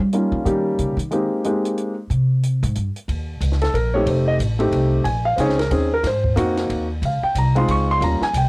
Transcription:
0.00 G3
0.13 G3 A#3 C#4 D#4 F4, closed hi-hat
0.32 F3
0.45 D#3 G3 A#3 C#4 D#4 G4, closed hi-hat
0.78 C#3, closed hi-hat
0.97 D#3, closed hi-hat
1.11 G#3 A#3 C4 D#4 G4, closed hi-hat
1.44 G#3 A#3 C4 D#4 G4, closed hi-hat
1.65 closed hi-hat
1.78 closed hi-hat
2.10 C3, closed hi-hat
2.43 closed hi-hat
2.63 G#2, closed hi-hat
2.75 G2, closed hi-hat
2.96 closed hi-hat
3.08 D#2, kick, ride
3.40 C#2, kick, hi-hat pedal, ride
3.52 snare
3.61 A4, snare, ride
3.74 A#1 A#4, kick, ride
3.94 A3 C4 D#4 G4 C#5
4.06 F1 C5, kick, ride
4.28 D#5
4.39 A1, kick, hi-hat pedal, ride
4.59 A3 C4 D#4 G4, ride
4.71 C2, kick, ride
5.04 A#1 G#5, kick, ride
5.25 F5
5.36 C#2 C4 C#4 D#4 G#4 C5, kick, hi-hat pedal, ride
5.41 C#5
5.50 snare
5.59 A#4, snare, ride
5.71 D#2 C4 C#4 D#4 G#4, kick, ride
5.94 A#4
6.04 G#2 C5, kick, snare, ride
6.24 kick
6.36 F2 A#3 C4 D#4 F#4, kick, hi-hat pedal, ride
6.57 snare, ride
6.70 D#2, kick, ride
7.02 C#2 F5, kick, ride
7.23 G5, muted upright bass stroke
7.35 C2 A#5, kick, hi-hat pedal, ride
7.55 G#3 C4 D#4 F4 C6, ride
7.68 C#2 C#6, kick, ride
7.91 C6
8.00 D#2 G3 A#3 C#4 F4 A#5, kick, ride
8.20 G#5, muted upright bass stroke, snare
8.33 C2 G5, kick, hi-hat pedal, ride

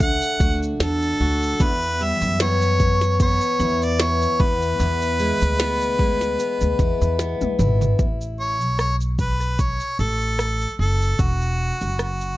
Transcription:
Already playing: C#2 D3 A3
0.00 D4 F#5, kick, shaker
0.22 shaker
0.40 D2 F#4, kick, shaker
0.63 shaker
0.80 E2 D4 A4, snare, shaker
1.02 shaker
1.20 D2 F#4
1.43 shaker
1.60 E2 B4, kick, shaker
1.82 shaker
2.01 G3 E5
2.21 F#2, shaker
2.40 B3 C#5, snare, shaker
2.62 shaker
2.80 kick, shaker
3.01 snare, shaker
3.20 B3 C#5, kick, shaker
3.41 shaker
3.60 E2 E4, shaker
3.82 D5, shaker
4.00 B3 C#5, snare, shaker
4.22 shaker
4.40 E2 B4, kick
4.62 shaker
4.80 E2, shaker
5.02 shaker
5.19 G#3, shaker
5.42 D2, shaker
5.59 B3, snare, shaker
5.81 shaker
5.99 G#3, kick
6.21 snare, shaker
6.39 B3, shaker
6.61 D2, shaker
6.79 E2 E4, kick, shaker
7.01 E2, shaker
7.19 B3, snare, shaker
7.41 D2, high tom, shaker
7.59 G#1 E4, mid tom, shaker
7.81 floor tom, shaker
7.99 A1, kick, shaker
8.21 shaker
8.40 C#5
8.61 B1, shaker
8.79 C#5, cross-stick, shaker
9.01 shaker
9.19 B4, kick, shaker
9.40 cross-stick, shaker
9.59 C#5, kick, shaker
9.80 shaker
9.99 A1 A4, shaker
10.21 shaker
10.39 cross-stick, shaker
10.61 shaker
10.79 F#1 A4
11.02 shaker
11.19 E1 F#4, kick, shaker
11.41 shaker
11.81 F#1, shaker
11.99 F#4, cross-stick, shaker
12.21 shaker

